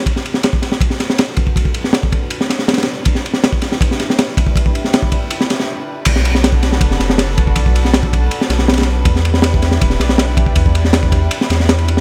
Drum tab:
CC |--------------------------------|--------------------------------|--------------------------------|--------------------------------|
RD |x---x---x---x---x---x---x---x---|x---x---x---x---x---x---xxxx----|x---x---x---x---x---x---x---x---|x---x---x---x---x---x-----------|
SD |--o---o-o---o-o---o-o-o-o-------|------o-o---------o-o-o-oooo----|--o---o-o---o-o---o-o-o-o-------|------o-o---------o-o-o---------|
BD |o---------o-----o-----------o-o-|o-o-------o-o-------------------|o---------o-----o-----------o-o-|o-o-------o-o-------------------|

CC |x-------------------------------|--------------------------------|--------------------------------|--------------------------------|
RD |x---x---x---x---x---x---x---x---|x---x---x---x---x---x---xxxx----|x---x---x---x---x---x---x---x---|x---x---x---x---x---x---x-x-x---|
SD |--o---o-o---o-o---o-o-o-o-------|------o-o---------o-o-o-oooo----|--o---o-o---o-o---o-o-o-o-------|------o-o---------o-o-o-o-----o-|
BD |o---------o-----o-----------o-o-|o-o-------o-o-------------------|o---------o-----o-----------o-o-|o-o-------o-o-------------------|